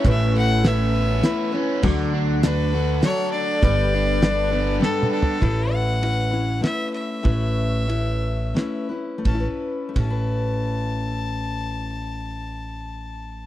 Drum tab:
CC |------------------|x-----------------|------------------|x-----------------|
RD |------------------|------------------|------------------|------x-----x--x--|
HH |x-----x-----x-----|------x-----x-----|x-----x-----------|------------------|
SD |------o-----o-----|------o-----o-----|------o-----o-----|------------o-----|
T2 |------------------|------------------|--------------o---|------------------|
FT |------------------|------------------|----------------o-|------------------|
BD |o-----------------|o-----------------|o-----------------|o-----------------|

CC |------------------|------------------|------------------|
RD |x-----x-----x-----|x-----x-----------|------------------|
HH |------------------|------------------|------------------|
SD |------------o-----|------------------|------------------|
T2 |------------------|------------------|------------------|
FT |------------------|------------------|------------------|
BD |o-----------------|o-----o-----------|------------------|